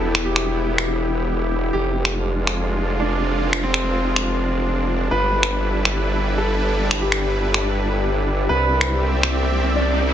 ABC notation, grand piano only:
X:1
M:4/4
L:1/8
Q:1/4=142
K:Flyd
V:1 name="Grand piano"
A G6- G | G3 z3 D2- | D C6- C | B3 z3 A2- |
A G6- G | B3 z3 d2 |]